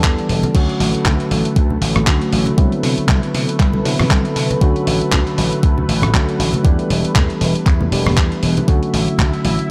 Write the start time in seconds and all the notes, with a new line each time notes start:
Already playing: D3 E3 G3 B3 D4 A4 D6
0.04 E2, kick, clap, closed hi-hat
0.18 closed hi-hat
0.29 E1, open hi-hat
0.43 closed hi-hat, high conga
0.54 D2 D3 F#3 A3 C#4 F#4 B4, kick, closed hi-hat, crash
0.69 closed hi-hat
0.80 A1, open hi-hat
0.95 muted slap bass stroke, closed hi-hat
1.05 D2, kick, clap, closed hi-hat, high conga
1.20 closed hi-hat
1.31 A1, open hi-hat
1.45 closed hi-hat
1.56 D2, kick, closed hi-hat
1.70 high conga
1.81 A1, open hi-hat
1.96 A1, cross-stick, closed hi-hat, low conga
2.06 D2 D3 F#3 A3 C#4 F#4, kick, clap, closed hi-hat
2.21 closed hi-hat
2.33 A1, open hi-hat
2.46 closed hi-hat, high conga
2.57 C2 D3 F#3 B3 C4 E4, kick, closed hi-hat
2.72 closed hi-hat
2.83 C3, open hi-hat
2.98 muted slap bass stroke, closed hi-hat
3.08 C2, kick, clap, closed hi-hat, high conga
3.23 closed hi-hat
3.34 C3, open hi-hat
3.49 closed hi-hat
3.60 C2, kick, clap, closed hi-hat
3.73 high conga
3.84 C3 D3 F#3 B3 C4 E4, open hi-hat
3.99 C3, cross-stick, open hi-hat, low conga
4.11 C2, kick, clap, closed hi-hat
4.25 closed hi-hat
4.36 C3, open hi-hat
4.50 closed hi-hat, high conga
4.60 D2 D3 F#3 A3 C#4 F#4, kick, closed hi-hat
4.76 closed hi-hat
4.87 A1, open hi-hat
5.01 muted slap bass stroke, closed hi-hat
5.12 D2, kick, clap, closed hi-hat, high conga
5.27 closed hi-hat
5.38 A1, open hi-hat
5.53 closed hi-hat
5.63 D2, kick, closed hi-hat
5.78 high conga
5.89 A1, open hi-hat
6.02 A1, cross-stick, closed hi-hat, low conga
6.13 D2 D3 F#3 A3 C#4 F#4, kick, clap, closed hi-hat
6.29 closed hi-hat
6.39 A1, open hi-hat
6.53 closed hi-hat, high conga
6.63 E2 E3 G3 B3 D4 G4, kick, closed hi-hat
6.79 closed hi-hat
6.90 E1, open hi-hat
7.04 muted slap bass stroke, closed hi-hat
7.15 E2, kick, clap, closed hi-hat, high conga
7.30 closed hi-hat
7.41 E1, open hi-hat
7.55 closed hi-hat
7.66 E2, kick, clap, closed hi-hat
7.81 high conga
7.91 E1 E3 G3 B3 D4 G4, open hi-hat
8.06 E1, cross-stick, open hi-hat, low conga
8.17 E2, kick, clap, closed hi-hat
8.32 closed hi-hat
8.43 E1, open hi-hat
8.57 closed hi-hat, high conga
8.67 D2 D3 F#3 A3 C#4 E4 F#4 E5, kick, closed hi-hat
8.83 closed hi-hat
8.94 A1, open hi-hat
9.08 muted slap bass stroke, closed hi-hat
9.18 D2, kick, clap, closed hi-hat, high conga
9.33 closed hi-hat
9.45 A1, open hi-hat
9.59 closed hi-hat